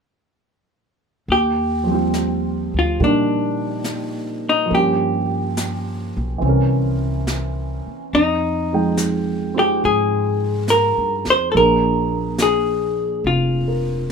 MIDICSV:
0, 0, Header, 1, 6, 480
1, 0, Start_track
1, 0, Key_signature, -3, "major"
1, 0, Tempo, 854701
1, 729, Time_signature, 4, 2, 24, 8
1, 7928, End_track
2, 0, Start_track
2, 0, Title_t, "Hollow-body jazz guitar"
2, 0, Program_c, 0, 26
2, 740, Note_on_c, 0, 67, 71
2, 1565, Note_on_c, 0, 65, 62
2, 1571, Note_off_c, 0, 67, 0
2, 1693, Note_off_c, 0, 65, 0
2, 1707, Note_on_c, 0, 62, 59
2, 2521, Note_off_c, 0, 62, 0
2, 2524, Note_on_c, 0, 63, 67
2, 2665, Note_on_c, 0, 67, 69
2, 2666, Note_off_c, 0, 63, 0
2, 4074, Note_off_c, 0, 67, 0
2, 4576, Note_on_c, 0, 63, 87
2, 5028, Note_off_c, 0, 63, 0
2, 5386, Note_on_c, 0, 67, 69
2, 5530, Note_off_c, 0, 67, 0
2, 5532, Note_on_c, 0, 68, 67
2, 5985, Note_off_c, 0, 68, 0
2, 6011, Note_on_c, 0, 70, 68
2, 6315, Note_off_c, 0, 70, 0
2, 6348, Note_on_c, 0, 72, 81
2, 6465, Note_off_c, 0, 72, 0
2, 6468, Note_on_c, 0, 69, 57
2, 6488, Note_off_c, 0, 69, 0
2, 6497, Note_on_c, 0, 70, 80
2, 6977, Note_on_c, 0, 68, 65
2, 6984, Note_off_c, 0, 70, 0
2, 7449, Note_off_c, 0, 68, 0
2, 7451, Note_on_c, 0, 65, 50
2, 7928, Note_off_c, 0, 65, 0
2, 7928, End_track
3, 0, Start_track
3, 0, Title_t, "Grand piano"
3, 0, Program_c, 1, 0
3, 829, Control_c, 1, 64, 127
3, 1030, Note_on_c, 1, 53, 40
3, 1050, Note_on_c, 1, 55, 35
3, 1073, Note_on_c, 1, 60, 37
3, 1090, Note_on_c, 1, 65, 41
3, 1675, Note_off_c, 1, 55, 0
3, 1684, Note_on_c, 1, 55, 35
3, 1692, Note_on_c, 1, 58, 33
3, 1699, Note_on_c, 1, 51, 36
3, 2607, Note_off_c, 1, 53, 0
3, 2616, Note_on_c, 1, 53, 43
3, 2632, Note_off_c, 1, 58, 0
3, 2640, Note_on_c, 1, 58, 41
3, 2647, Note_off_c, 1, 55, 0
3, 2655, Note_off_c, 1, 51, 0
3, 2657, Note_off_c, 1, 60, 0
3, 2659, Control_c, 1, 64, 0
3, 2659, Note_on_c, 1, 61, 42
3, 2665, Note_off_c, 1, 65, 0
3, 2681, Note_on_c, 1, 67, 51
3, 2751, Control_c, 1, 64, 127
3, 3585, Note_on_c, 1, 52, 44
3, 3591, Note_off_c, 1, 53, 0
3, 3601, Note_on_c, 1, 60, 42
3, 3604, Note_off_c, 1, 58, 0
3, 3613, Note_off_c, 1, 61, 0
3, 3615, Control_c, 1, 64, 0
3, 3622, Note_on_c, 1, 61, 45
3, 3624, Note_off_c, 1, 67, 0
3, 3644, Note_on_c, 1, 70, 44
3, 3699, Control_c, 1, 64, 127
3, 4555, Note_off_c, 1, 52, 0
3, 4564, Note_off_c, 1, 60, 0
3, 4574, Note_off_c, 1, 61, 0
3, 4576, Control_c, 1, 64, 0
3, 4585, Note_off_c, 1, 70, 0
3, 4663, Control_c, 1, 64, 127
3, 4901, Note_on_c, 1, 53, 40
3, 4907, Note_on_c, 1, 63, 38
3, 4908, Note_on_c, 1, 56, 33
3, 4910, Note_on_c, 1, 79, 43
3, 5360, Note_on_c, 1, 60, 35
3, 5369, Note_on_c, 1, 65, 33
3, 5378, Note_on_c, 1, 68, 42
3, 6464, Note_off_c, 1, 53, 0
3, 6472, Note_on_c, 1, 53, 38
3, 6481, Note_off_c, 1, 60, 0
3, 6481, Note_on_c, 1, 58, 36
3, 6485, Note_off_c, 1, 65, 0
3, 6488, Note_off_c, 1, 63, 0
3, 6489, Note_off_c, 1, 56, 0
3, 6489, Note_off_c, 1, 68, 0
3, 6490, Note_off_c, 1, 79, 0
3, 6490, Control_c, 1, 64, 0
3, 6492, Note_on_c, 1, 62, 35
3, 6497, Note_on_c, 1, 68, 42
3, 6592, Control_c, 1, 64, 127
3, 7683, Note_on_c, 1, 70, 37
3, 7928, Note_off_c, 1, 53, 0
3, 7928, Note_off_c, 1, 58, 0
3, 7928, Note_off_c, 1, 62, 0
3, 7928, Note_off_c, 1, 68, 0
3, 7928, Note_off_c, 1, 70, 0
3, 7928, End_track
4, 0, Start_track
4, 0, Title_t, "Upright bass"
4, 0, Program_c, 2, 32
4, 721, Note_on_c, 2, 39, 69
4, 1515, Note_off_c, 2, 39, 0
4, 1538, Note_on_c, 2, 38, 50
4, 1679, Note_off_c, 2, 38, 0
4, 1685, Note_on_c, 2, 46, 67
4, 2625, Note_off_c, 2, 46, 0
4, 2644, Note_on_c, 2, 43, 67
4, 3434, Note_off_c, 2, 43, 0
4, 3463, Note_on_c, 2, 35, 57
4, 3600, Note_off_c, 2, 35, 0
4, 3604, Note_on_c, 2, 36, 61
4, 4394, Note_off_c, 2, 36, 0
4, 4568, Note_on_c, 2, 41, 73
4, 5503, Note_off_c, 2, 41, 0
4, 5526, Note_on_c, 2, 44, 72
4, 6142, Note_off_c, 2, 44, 0
4, 6164, Note_on_c, 2, 43, 51
4, 6312, Note_off_c, 2, 43, 0
4, 6325, Note_on_c, 2, 41, 50
4, 6473, Note_off_c, 2, 41, 0
4, 6485, Note_on_c, 2, 34, 62
4, 7421, Note_off_c, 2, 34, 0
4, 7437, Note_on_c, 2, 29, 64
4, 7928, Note_off_c, 2, 29, 0
4, 7928, End_track
5, 0, Start_track
5, 0, Title_t, "Muted upright bass strokes"
5, 4415, Note_on_c, 9, 29, 28
5, 4472, Note_off_c, 9, 29, 0
5, 7928, End_track
6, 0, Start_track
6, 0, Title_t, "Drums"
6, 718, Note_on_c, 9, 25, 28
6, 1200, Note_on_c, 9, 38, 32
6, 1200, Note_on_c, 9, 44, 43
6, 1256, Note_off_c, 9, 38, 0
6, 1256, Note_off_c, 9, 44, 0
6, 1679, Note_off_c, 9, 25, 0
6, 1679, Note_on_c, 9, 25, 27
6, 2158, Note_on_c, 9, 38, 28
6, 2158, Note_on_c, 9, 44, 41
6, 2214, Note_off_c, 9, 38, 0
6, 2214, Note_off_c, 9, 44, 0
6, 2643, Note_off_c, 9, 25, 0
6, 2643, Note_on_c, 9, 25, 30
6, 3128, Note_on_c, 9, 38, 35
6, 3128, Note_on_c, 9, 44, 44
6, 3185, Note_off_c, 9, 38, 0
6, 3185, Note_off_c, 9, 44, 0
6, 3606, Note_off_c, 9, 25, 0
6, 3606, Note_on_c, 9, 25, 26
6, 4084, Note_on_c, 9, 38, 35
6, 4084, Note_on_c, 9, 44, 35
6, 4140, Note_off_c, 9, 38, 0
6, 4140, Note_off_c, 9, 44, 0
6, 4564, Note_off_c, 9, 25, 0
6, 4564, Note_on_c, 9, 25, 29
6, 5040, Note_on_c, 9, 38, 34
6, 5040, Note_on_c, 9, 44, 43
6, 5096, Note_off_c, 9, 38, 0
6, 5096, Note_off_c, 9, 44, 0
6, 5522, Note_off_c, 9, 25, 0
6, 5522, Note_on_c, 9, 25, 26
6, 5996, Note_on_c, 9, 38, 31
6, 5996, Note_on_c, 9, 44, 36
6, 6053, Note_off_c, 9, 38, 0
6, 6053, Note_off_c, 9, 44, 0
6, 6319, Note_on_c, 9, 38, 23
6, 6375, Note_off_c, 9, 38, 0
6, 6477, Note_off_c, 9, 25, 0
6, 6477, Note_on_c, 9, 25, 28
6, 6955, Note_on_c, 9, 38, 37
6, 6955, Note_on_c, 9, 44, 46
6, 7011, Note_off_c, 9, 38, 0
6, 7011, Note_off_c, 9, 44, 0
6, 7437, Note_off_c, 9, 25, 0
6, 7437, Note_on_c, 9, 25, 24
6, 7928, Note_off_c, 9, 25, 0
6, 7928, End_track
0, 0, End_of_file